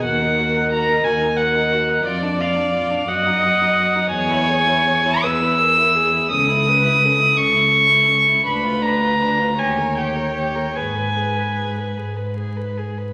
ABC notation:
X:1
M:6/8
L:1/16
Q:3/8=56
K:D#phr
V:1 name="Violin"
f4 a2 g2 f4 | =d2 =f4 ^f6 | g6 e'6 | d'6 c'6 |
b2 a4 g2 =g4 | g6 z6 |]
V:2 name="Viola"
A12 | =d6 ^d6 | c6 B2 A2 G2 | =A2 B2 A8 |
B6 c6 | B8- B z3 |]
V:3 name="Violin"
F D F D F D F D F D F D | =F =D F D F D ^F ^D F D F D | G E G E G E G E G E G E | C E C E C E C E C E C E |
=D =F D F D F =G A G A G A | G B G B G B G B G B G B |]
V:4 name="Cello" clef=bass
D,,6 D,,6 | =F,,6 ^F,,6 | E,,6 E,,6 | C,,6 C,,6 |
=D,,6 ^D,,6 | G,,6 G,,6 |]